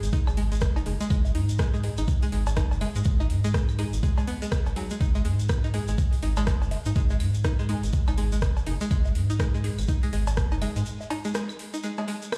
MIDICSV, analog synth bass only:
0, 0, Header, 1, 2, 480
1, 0, Start_track
1, 0, Tempo, 487805
1, 1086, Time_signature, 4, 2, 24, 8
1, 12181, End_track
2, 0, Start_track
2, 0, Title_t, "Analog synth bass"
2, 0, Program_c, 0, 38
2, 29, Note_on_c, 0, 32, 97
2, 94, Note_off_c, 0, 32, 0
2, 269, Note_on_c, 0, 32, 106
2, 796, Note_off_c, 0, 32, 0
2, 846, Note_on_c, 0, 30, 85
2, 942, Note_off_c, 0, 30, 0
2, 1086, Note_on_c, 0, 32, 99
2, 1326, Note_on_c, 0, 44, 97
2, 1341, Note_off_c, 0, 32, 0
2, 1875, Note_off_c, 0, 44, 0
2, 1949, Note_on_c, 0, 32, 98
2, 2015, Note_off_c, 0, 32, 0
2, 2287, Note_on_c, 0, 32, 103
2, 2669, Note_on_c, 0, 30, 94
2, 2684, Note_off_c, 0, 32, 0
2, 2816, Note_off_c, 0, 30, 0
2, 2909, Note_on_c, 0, 44, 96
2, 2975, Note_off_c, 0, 44, 0
2, 3006, Note_on_c, 0, 32, 99
2, 3246, Note_on_c, 0, 44, 94
2, 3261, Note_off_c, 0, 32, 0
2, 3795, Note_off_c, 0, 44, 0
2, 3869, Note_on_c, 0, 32, 97
2, 3935, Note_off_c, 0, 32, 0
2, 4589, Note_on_c, 0, 32, 88
2, 4655, Note_off_c, 0, 32, 0
2, 4926, Note_on_c, 0, 32, 100
2, 5166, Note_on_c, 0, 44, 98
2, 5181, Note_off_c, 0, 32, 0
2, 5715, Note_off_c, 0, 44, 0
2, 5788, Note_on_c, 0, 32, 98
2, 5854, Note_off_c, 0, 32, 0
2, 6126, Note_on_c, 0, 32, 106
2, 6509, Note_on_c, 0, 30, 95
2, 6524, Note_off_c, 0, 32, 0
2, 6656, Note_off_c, 0, 30, 0
2, 6749, Note_on_c, 0, 44, 94
2, 6814, Note_off_c, 0, 44, 0
2, 6846, Note_on_c, 0, 32, 99
2, 7086, Note_on_c, 0, 44, 94
2, 7101, Note_off_c, 0, 32, 0
2, 7635, Note_off_c, 0, 44, 0
2, 7709, Note_on_c, 0, 32, 96
2, 7774, Note_off_c, 0, 32, 0
2, 7949, Note_on_c, 0, 32, 102
2, 8476, Note_off_c, 0, 32, 0
2, 8526, Note_on_c, 0, 30, 85
2, 8623, Note_off_c, 0, 30, 0
2, 8766, Note_on_c, 0, 32, 98
2, 9006, Note_on_c, 0, 44, 97
2, 9021, Note_off_c, 0, 32, 0
2, 9555, Note_off_c, 0, 44, 0
2, 9629, Note_on_c, 0, 32, 100
2, 9695, Note_off_c, 0, 32, 0
2, 9967, Note_on_c, 0, 32, 104
2, 10350, Note_on_c, 0, 30, 92
2, 10364, Note_off_c, 0, 32, 0
2, 10497, Note_off_c, 0, 30, 0
2, 10589, Note_on_c, 0, 44, 95
2, 10655, Note_off_c, 0, 44, 0
2, 12181, End_track
0, 0, End_of_file